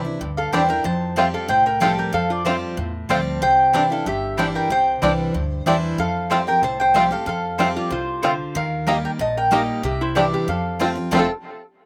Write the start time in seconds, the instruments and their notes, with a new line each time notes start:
Already playing: steel-string acoustic guitar C3, mandolin D5
0.04 steel-string acoustic guitar D4 E4
0.21 upright bass D2, steel-string acoustic guitar G2
0.37 resonator guitar played with a steel bar A4, mandolin F5
0.52 upright bass E2, steel-string acoustic guitar E3 G3 D4 E4, mandolin C4 E4 D5 G5, five-string banjo C4 D4 G4, resonator guitar played with a steel bar C5
0.69 steel-string acoustic guitar D4 E4, resonator guitar played with a steel bar A#4, mandolin G5
0.84 steel-string acoustic guitar F2, upright bass F2, resonator guitar played with a steel bar C5, mandolin A5
1.16 steel-string acoustic guitar F3 G3 C4 G4, mandolin A3 F4 C5 G5, five-string banjo C4 F4
1.34 resonator guitar played with a steel bar A4, mandolin F5
1.48 upright bass C2, steel-string acoustic guitar A2, resonator guitar played with a steel bar C5, mandolin G5
1.66 resonator guitar played with a steel bar A#4, mandolin G5
1.80 steel-string acoustic guitar F3 G3 C4 G4, mandolin A3 F4 C5 F5 G5, five-string banjo C4 F4, resonator guitar played with a steel bar A4
1.99 resonator guitar played with a steel bar A#4, mandolin G5
2.13 steel-string acoustic guitar F2, upright bass F2, resonator guitar played with a steel bar A4, mandolin F5
2.30 resonator guitar played with a steel bar F4, mandolin D5
2.45 steel-string acoustic guitar F3 G3 C4 G4, mandolin A3 F4 C5 G5, five-string banjo C4 F4, resonator guitar played with a steel bar F4
2.77 upright bass E2, steel-string acoustic guitar A2
3.09 upright bass D2, steel-string acoustic guitar F3 G3 C4 G4, mandolin A3 F4 C5 G5 A5, five-string banjo C4 F4, resonator guitar played with a steel bar C5
3.42 upright bass C2, steel-string acoustic guitar C3, resonator guitar played with a steel bar C5, mandolin G5
3.73 steel-string acoustic guitar E3 G3 D4 E4, mandolin C4 E4 D5 G5, five-string banjo C4 D4 G4
3.90 steel-string acoustic guitar D4 E4, resonator guitar played with a steel bar A4, mandolin F5
4.06 upright bass G1, steel-string acoustic guitar G2, resonator guitar played with a steel bar G4, mandolin E5
4.37 steel-string acoustic guitar E3 G3 D4 E4, mandolin C4 E4 D5 G5, five-string banjo C4 D4 G4
4.55 resonator guitar played with a steel bar A#4, mandolin G5
4.70 upright bass C2, steel-string acoustic guitar C3, resonator guitar played with a steel bar C5, mandolin G5
5.02 upright bass C2, steel-string acoustic guitar E3 G3 D4 E4, mandolin C4 E4 D5 G5, five-string banjo C4 D4 G4
5.34 upright bass D2, steel-string acoustic guitar G2
5.66 upright bass E2, steel-string acoustic guitar E3 G3 D4 E4, mandolin C4 E4 C5 D5 G5, five-string banjo C4 D4 G4, resonator guitar played with a steel bar E4
5.98 steel-string acoustic guitar F2, upright bass F2, resonator guitar played with a steel bar A4, mandolin F5
6.30 steel-string acoustic guitar F3 G3 C4 G4, mandolin A3 F4 C5 G5, five-string banjo C4 F4
6.47 steel-string acoustic guitar C4 G4, resonator guitar played with a steel bar A#4, mandolin G5
6.62 upright bass C2, steel-string acoustic guitar A2, resonator guitar played with a steel bar C5, mandolin A5
6.80 resonator guitar played with a steel bar C5, mandolin G5
6.94 steel-string acoustic guitar F3 G3 C4 G4, mandolin A3 F4 C5 G5, five-string banjo C4 F4
7.11 steel-string acoustic guitar C4 G4, resonator guitar played with a steel bar A4, mandolin F5
7.26 steel-string acoustic guitar F2, upright bass F2, resonator guitar played with a steel bar A4, mandolin F5
7.58 steel-string acoustic guitar F3 G3 C4 G4, mandolin A3 F4 C5 G5, five-string banjo C4 F4
7.76 resonator guitar played with a steel bar F4, mandolin D5
7.90 upright bass C2, steel-string acoustic guitar C3, resonator guitar played with a steel bar F4, mandolin C5
8.22 steel-string acoustic guitar D3, mandolin A3 F4 C5 G5, five-string banjo C4 F4, resonator guitar played with a steel bar F4
8.55 upright bass D#2, steel-string acoustic guitar D#3, resonator guitar played with a steel bar A#4, mandolin F5
8.87 steel-string acoustic guitar G3 A#3 D#4 G4, mandolin A#3 G4 D#5 A#5, five-string banjo A#3 D#4 G4
9.05 resonator guitar played with a steel bar A#4, mandolin G5
9.19 upright bass A#1, steel-string acoustic guitar A#2, resonator guitar played with a steel bar D#5, mandolin A5
9.37 resonator guitar played with a steel bar A#4, mandolin G5
9.51 steel-string acoustic guitar G3 A#3 D#4 G4, mandolin A#3 G4 D#5 A#5, five-string banjo A#3 D#4 G4, resonator guitar played with a steel bar G4
9.83 upright bass C2, steel-string acoustic guitar C3, resonator guitar played with a steel bar G4, mandolin E5
10.01 resonator guitar played with a steel bar E4, mandolin C5
10.15 steel-string acoustic guitar E3 G3 D4 E4, mandolin C4 E4 D5 G5, five-string banjo C4 D4 G4, resonator guitar played with a steel bar G4
10.33 resonator guitar played with a steel bar G4, mandolin E5
10.48 upright bass F2, steel-string acoustic guitar F2, resonator guitar played with a steel bar A4, mandolin F5
10.79 steel-string acoustic guitar F3 A3 C4 F4, mandolin C4 F4 C5 A5, five-string banjo C4 F4
10.95 steel-string acoustic guitar C4 F4
11.11 upright bass F1, steel-string acoustic guitar F2 C3 F3 A3 C4 F4, five-string banjo A3 C4, mandolin C4 F4 C5 A5, resonator guitar played with a steel bar C4
11.17 five-string banjo F4 A4